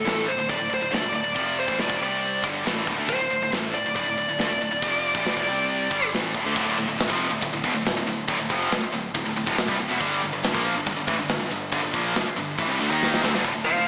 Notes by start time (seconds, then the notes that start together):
Already playing: A4
0.05 A1 A2 E3 A3, snare, open hi-hat
0.27 D1 D2 A2 C5
0.38 D1 D2 A2
0.49 D1 D2 A2 D5, kick, open hi-hat
0.60 D1 D2 A2
0.69 D1 D2 A2
0.74 C5
0.81 D1 D2 A2
0.91 D2 D3 A3 D5, snare, open hi-hat
1.01 D1 D2 A2
1.12 D1 D2 A2 D5
1.24 D1 D2 A2
1.34 F1 F2 C3 F3, kick, open hi-hat
1.60 C5
1.66 A1 A2 E3, kick
1.78 D1 D2 A2 D5, snare, open hi-hat
1.88 E1 E2 B2, kick
1.99 C2 C3 G3 C4
2.03 D5
2.22 open hi-hat
2.43 G1 G2 D3 G3, kick
2.64 A1 A2 E3 A3, snare, open hi-hat
2.87 D1 D2 A2, kick
2.97 D2 D3 A3
3.08 D1 D2 A2 C5, kick, open hi-hat
3.19 D1 D2 A2
3.30 D1 D2 A2
3.42 D1 D2 A2
3.52 A1 A2 E3 A3, snare, open hi-hat
3.74 D1 D2 A2 D5
3.85 D1 D2 A2
3.95 D1 D2 A2 D5, kick, open hi-hat
4.07 D1 D2 A2
4.17 D1 D2 A2
4.28 D1 D2 A2
4.39 D2 D3 A3, snare, open hi-hat
4.50 D1 D2 A2
4.61 D1 D2 A2
4.71 D1 D2 A2
4.82 F1 F2 C3 F3, kick, open hi-hat
5.14 A1 A2 E3, kick
5.25 D1 D2 A2, snare, open hi-hat
5.36 E1 E2 B2, kick
5.47 C2 C3 G3 C4
5.70 open hi-hat
5.91 G1 G2 D3 G3, kick
6.12 A1 A2 E3 A3, snare, open hi-hat
6.34 D1 D2 A2, kick
6.45 D2 D3 A3
6.56 D1 D2 A2 D3, kick, crash
6.77 D1 D2 A2, open hi-hat
6.88 D1 D2 A2
6.98 D1 D2 A2, snare, open hi-hat
7.08 F1 F2 C3 F3, kick
7.21 open hi-hat
7.30 D1 D2 A2
7.41 D1 D2 A2, kick, open hi-hat
7.52 D1 D2 A2
7.64 E1 E2 B2, kick, open hi-hat
7.74 D1 D2 A2
7.85 snare, open hi-hat
7.95 D1 D2 A2
8.06 D1 D2 A2, open hi-hat
8.28 D1 D2 A2, kick, open hi-hat
8.39 D1 D2 A2
8.49 F1 F2 C3 F3, kick, open hi-hat
8.71 D1 D2 A2, snare, open hi-hat
8.82 muted picked electric bass stroke, muted distorted electric guitar stroke
8.92 D1 D2 A2, open hi-hat
9.14 D1 D2 A2, kick, open hi-hat
9.25 D1 D2 A2
9.36 D1 D2 A2, open hi-hat
9.46 D1 D2 A2, kick
9.57 D1 D2 A2, snare, open hi-hat
9.68 C2 C3 G3, kick
9.78 D1 D2 A2, open hi-hat
9.89 E1 E2 B2
10.00 G1 G2 D3 G3, kick, open hi-hat
10.22 G1 G2 D3, open hi-hat
10.33 G1 G2 D3
10.43 G1 G2 D3, snare, open hi-hat
10.53 A#1 A#2 F3 A#3, kick
10.65 open hi-hat
10.76 G1 G2 D3
10.86 G1 G2 D3, kick, open hi-hat
10.96 G1 G2 D3
11.07 A1 A2 E3, kick, open hi-hat
11.18 G1 G2 D3
11.29 snare, open hi-hat
11.39 G1 G2 D3
11.51 G1 G2 D3, open hi-hat
11.72 G1 G2 D3, kick, open hi-hat
11.82 G1 G2 D3
11.93 A#1 A#2 F3 A#3, kick, open hi-hat
12.15 G1 G2 D3, snare, open hi-hat
12.26 muted picked electric bass stroke, muted distorted electric guitar stroke
12.37 G1 G2 D3, open hi-hat
12.58 A1 A2 E3, kick, open hi-hat
12.68 C2 C3 G3
12.79 D2 D3 A3, open hi-hat
12.89 D#2 D#3 A#3 D#4
13.03 snare
13.14 snare
13.22 D2 D3 A3, snare
13.33 G1 G2 D3, snare
13.44 D1 D2 A2, kick, open hi-hat
13.54 D1 D2 A2
13.65 D1 D2 A2 C5 F5
13.77 D1 D2 A2